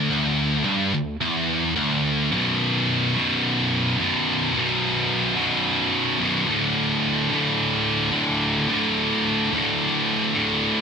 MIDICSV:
0, 0, Header, 1, 2, 480
1, 0, Start_track
1, 0, Key_signature, 2, "minor"
1, 0, Tempo, 554017
1, 87, Time_signature, 4, 2, 24, 8
1, 9367, End_track
2, 0, Start_track
2, 0, Title_t, "Distorted electric guitar"
2, 0, Program_c, 0, 30
2, 87, Note_on_c, 0, 38, 113
2, 558, Note_off_c, 0, 38, 0
2, 562, Note_on_c, 0, 43, 100
2, 798, Note_off_c, 0, 43, 0
2, 816, Note_on_c, 0, 38, 80
2, 1004, Note_off_c, 0, 38, 0
2, 1050, Note_on_c, 0, 40, 107
2, 1519, Note_off_c, 0, 40, 0
2, 1523, Note_on_c, 0, 38, 107
2, 1998, Note_off_c, 0, 38, 0
2, 2006, Note_on_c, 0, 35, 99
2, 2027, Note_on_c, 0, 42, 93
2, 2043, Note_on_c, 0, 47, 118
2, 2723, Note_off_c, 0, 42, 0
2, 2725, Note_off_c, 0, 47, 0
2, 2729, Note_on_c, 0, 47, 102
2, 2748, Note_on_c, 0, 42, 80
2, 2760, Note_off_c, 0, 35, 0
2, 2764, Note_on_c, 0, 35, 75
2, 3431, Note_off_c, 0, 35, 0
2, 3434, Note_off_c, 0, 47, 0
2, 3441, Note_on_c, 0, 35, 78
2, 3444, Note_off_c, 0, 42, 0
2, 3458, Note_on_c, 0, 42, 95
2, 3476, Note_on_c, 0, 47, 87
2, 3910, Note_off_c, 0, 35, 0
2, 3919, Note_off_c, 0, 42, 0
2, 3928, Note_off_c, 0, 47, 0
2, 3930, Note_on_c, 0, 35, 86
2, 3948, Note_on_c, 0, 42, 97
2, 3963, Note_on_c, 0, 47, 115
2, 4635, Note_off_c, 0, 35, 0
2, 4638, Note_off_c, 0, 47, 0
2, 4644, Note_off_c, 0, 42, 0
2, 4649, Note_on_c, 0, 47, 94
2, 4662, Note_on_c, 0, 42, 75
2, 4679, Note_on_c, 0, 35, 74
2, 5350, Note_off_c, 0, 35, 0
2, 5354, Note_off_c, 0, 47, 0
2, 5360, Note_on_c, 0, 35, 79
2, 5361, Note_off_c, 0, 42, 0
2, 5384, Note_on_c, 0, 42, 86
2, 5397, Note_on_c, 0, 47, 92
2, 5590, Note_off_c, 0, 35, 0
2, 5599, Note_on_c, 0, 38, 111
2, 5602, Note_off_c, 0, 42, 0
2, 5608, Note_off_c, 0, 47, 0
2, 5618, Note_on_c, 0, 45, 115
2, 5635, Note_on_c, 0, 50, 111
2, 6316, Note_off_c, 0, 38, 0
2, 6319, Note_off_c, 0, 45, 0
2, 6319, Note_on_c, 0, 38, 78
2, 6341, Note_on_c, 0, 45, 92
2, 6349, Note_off_c, 0, 50, 0
2, 6353, Note_on_c, 0, 50, 90
2, 7023, Note_off_c, 0, 50, 0
2, 7029, Note_off_c, 0, 38, 0
2, 7033, Note_on_c, 0, 50, 106
2, 7040, Note_off_c, 0, 45, 0
2, 7052, Note_on_c, 0, 45, 88
2, 7069, Note_on_c, 0, 38, 74
2, 7506, Note_off_c, 0, 50, 0
2, 7509, Note_off_c, 0, 38, 0
2, 7516, Note_off_c, 0, 45, 0
2, 7520, Note_on_c, 0, 38, 103
2, 7534, Note_on_c, 0, 45, 103
2, 7553, Note_on_c, 0, 50, 110
2, 8229, Note_off_c, 0, 38, 0
2, 8237, Note_off_c, 0, 45, 0
2, 8246, Note_off_c, 0, 50, 0
2, 8251, Note_on_c, 0, 38, 85
2, 8271, Note_on_c, 0, 45, 84
2, 8286, Note_on_c, 0, 50, 88
2, 8952, Note_off_c, 0, 50, 0
2, 8954, Note_off_c, 0, 38, 0
2, 8962, Note_on_c, 0, 50, 90
2, 8965, Note_off_c, 0, 45, 0
2, 8982, Note_on_c, 0, 45, 79
2, 8995, Note_on_c, 0, 38, 78
2, 9367, Note_off_c, 0, 38, 0
2, 9367, Note_off_c, 0, 45, 0
2, 9367, Note_off_c, 0, 50, 0
2, 9367, End_track
0, 0, End_of_file